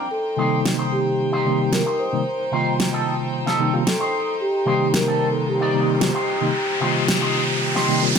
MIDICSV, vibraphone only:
0, 0, Header, 1, 2, 480
1, 0, Start_track
1, 0, Tempo, 535714
1, 105, Time_signature, 4, 2, 24, 8
1, 7336, End_track
2, 0, Start_track
2, 0, Title_t, "Vibraphone"
2, 0, Program_c, 0, 11
2, 100, Note_on_c, 0, 69, 96
2, 548, Note_off_c, 0, 69, 0
2, 825, Note_on_c, 0, 67, 78
2, 1541, Note_on_c, 0, 70, 87
2, 1566, Note_off_c, 0, 67, 0
2, 1782, Note_on_c, 0, 72, 89
2, 1790, Note_off_c, 0, 70, 0
2, 2230, Note_off_c, 0, 72, 0
2, 3470, Note_on_c, 0, 69, 90
2, 3914, Note_off_c, 0, 69, 0
2, 3948, Note_on_c, 0, 67, 91
2, 4430, Note_on_c, 0, 70, 95
2, 4441, Note_off_c, 0, 67, 0
2, 4725, Note_off_c, 0, 70, 0
2, 4752, Note_on_c, 0, 69, 90
2, 4912, Note_on_c, 0, 67, 83
2, 4913, Note_off_c, 0, 69, 0
2, 7273, Note_off_c, 0, 67, 0
2, 7336, End_track
0, 0, End_of_file